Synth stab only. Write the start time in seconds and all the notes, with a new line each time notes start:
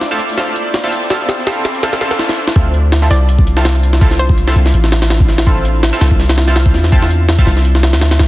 0.11 C4 E4 F4 A4
0.37 C4 E4 F4 A4
0.84 C4 E4 F4 A4
1.10 C4 E4 F4 A4
1.47 C4 E4 F4 A4
1.83 C4 E4 F4 A4
2.01 C4 E4 F4 A4
2.56 C4 E4 F4 A4
3.02 C4 E4 F4 A4
3.57 C4 E4 F4 A4
4.01 C4 E4 F4 A4
4.47 C4 E4 F4 A4
5.47 C4 E4 F4 A4
5.93 C4 E4 F4 A4
6.47 C4 E4 F4 A4
6.92 C4 E4 F4 A4
7.38 C4 E4 F4 A4